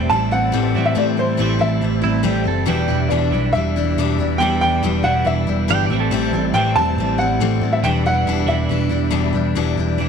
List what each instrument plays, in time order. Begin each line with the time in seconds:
Already playing: clean electric guitar A2 E3 G3 C4 E4, steel-string acoustic guitar C4, tonewheel organ G4 C5 E5 A5, grand piano G5
0.10 picked electric bass A1, steel-string acoustic guitar E3 G3 C4 E4, grand piano A5
0.31 steel-string acoustic guitar G3 C4 E4, grand piano F#5
0.52 picked electric bass A1, steel-string acoustic guitar A2 E3 G3 C4 E4
0.75 clean electric guitar A2 E3, picked electric bass A2, steel-string acoustic guitar G3 C4 E4
0.85 grand piano E5
0.95 steel-string acoustic guitar A2 E3 G3 C4 E4, picked electric bass A2, grand piano D5
1.17 steel-string acoustic guitar G3 C4 E4, grand piano C5
1.37 picked electric bass A1, steel-string acoustic guitar A2 E3 G3 C4 E4
1.59 picked electric bass A1, steel-string acoustic guitar G3 C4 E4, grand piano E5
1.81 picked electric bass A1, steel-string acoustic guitar E3 G3 C4 E4
2.01 picked electric bass A1, steel-string acoustic guitar G3 C4 E4, pedal steel guitar E4
2.23 picked electric bass A1, steel-string acoustic guitar A2 E3 G3 C4 E4, pedal steel guitar G4
2.44 picked electric bass F#1, steel-string acoustic guitar G3 C4 E4
2.48 pedal steel guitar A4
2.66 picked electric bass E1, steel-string acoustic guitar E2 B2 E3 G3 D4 E4, pedal steel guitar G4, tonewheel organ D5 B5
2.88 picked electric bass E1, steel-string acoustic guitar E3 G3 D4 E4
3.09 picked electric bass E1, steel-string acoustic guitar E2 B2 E3 G3 D4 E4, grand piano D5
3.32 picked electric bass B1, clean electric guitar E2 B2, steel-string acoustic guitar E3 G3 D4 E4
3.53 picked electric bass E1, steel-string acoustic guitar E3 G3 D4, grand piano E5
3.57 steel-string acoustic guitar E4
3.76 steel-string acoustic guitar E3 G3 D4 E4
3.96 picked electric bass E1, steel-string acoustic guitar E2 B2 E3 G3 D4 E4
4.18 picked electric bass E2, steel-string acoustic guitar E3 G3 D4 E4
4.38 picked electric bass E2, steel-string acoustic guitar E2 B2 E3 G3 D4, grand piano G5
4.42 steel-string acoustic guitar E4
4.61 steel-string acoustic guitar E3 G3 D4 E4, grand piano G5
4.83 picked electric bass E1, steel-string acoustic guitar E2 B2 E3 G3 D4 E4
5.03 picked electric bass E1, clean electric guitar B2, steel-string acoustic guitar E3 G3 D4 E4, grand piano F#5
5.07 clean electric guitar E2
5.25 picked electric bass E1, steel-string acoustic guitar E3 G3 D4 E4, grand piano E5
5.47 picked electric bass E1, steel-string acoustic guitar E3 G3 D4 E4
5.68 picked electric bass G1, steel-string acoustic guitar E2 B2 E3 G3 D4 E4, pedal steel guitar G5
5.86 picked electric bass A1, clean electric guitar A2, steel-string acoustic guitar E4, pedal steel guitar D5, tonewheel organ E5
5.90 clean electric guitar E3, steel-string acoustic guitar G3 C4, tonewheel organ C5 A5
6.00 pedal steel guitar A4
6.11 picked electric bass A1, steel-string acoustic guitar A2 E3 G3 C4 E4
6.15 pedal steel guitar A4
6.33 picked electric bass A1, steel-string acoustic guitar G3 C4 E4
6.54 picked electric bass A1, steel-string acoustic guitar A2 E3 G3 C4 E4, grand piano G5
6.76 picked electric bass E1, steel-string acoustic guitar G3 C4 E4, grand piano A5
6.97 picked electric bass A1, steel-string acoustic guitar E3 G3 C4
7.01 steel-string acoustic guitar E4
7.18 steel-string acoustic guitar G3 C4 E4, grand piano F#5
7.40 picked electric bass A1, steel-string acoustic guitar A2 E3 G3 C4 E4
7.61 picked electric bass A2, steel-string acoustic guitar G3 C4 E4
7.73 grand piano E5
7.83 picked electric bass E1, steel-string acoustic guitar E2 B2 E3 G3 D4 E4, tonewheel organ G4 D5 B5, grand piano G5
8.06 steel-string acoustic guitar E3 G3 D4 E4, grand piano F#5
8.26 picked electric bass E1, steel-string acoustic guitar E2 B2 E3 G3 D4 E4
8.47 picked electric bass E1, clean electric guitar E2 B2, steel-string acoustic guitar E3 G3 D4 E4, grand piano E5
8.69 picked electric bass E1, steel-string acoustic guitar E3 G3 D4 E4
8.89 picked electric bass E1, steel-string acoustic guitar E3 G3 D4 E4
9.10 picked electric bass E1, steel-string acoustic guitar E2 B2 E3 G3 D4 E4
9.33 picked electric bass E1, steel-string acoustic guitar E3 G3 D4 E4
9.55 picked electric bass E1, steel-string acoustic guitar E2 B2 E3 G3 D4 E4, tonewheel organ G4 D5 E5 B5
9.77 picked electric bass E1, steel-string acoustic guitar E3 G3 D4 E4
9.98 picked electric bass E1, steel-string acoustic guitar E3 G3 D4 E4